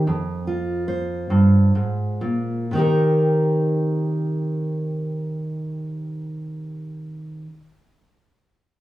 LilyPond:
\new Staff \with { instrumentName = "Steel-string acoustic guitar" } { \clef bass \time 6/8 \key c \minor \tempo 4. = 39 << { r8 f'8 c''2 | <ees ees' g' bes'>2.~ | <ees ees' g' bes'>2. | } \\ { f,4. g,8 aes,8 bes,8 | c2.~ | c2. | } >> }